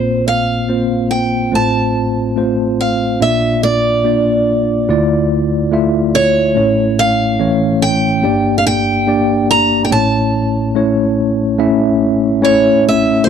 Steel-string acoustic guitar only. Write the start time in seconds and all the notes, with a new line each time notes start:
Already playing: C5
0.28 F5
1.11 G5
1.55 A5
2.81 F5
3.22 E5
3.63 D5
6.15 C#5
6.99 F5
7.82 G5
8.58 F5
8.67 G5
9.51 A#5
9.85 G5
9.92 A5
12.45 C#5
12.89 E5
13.24 C5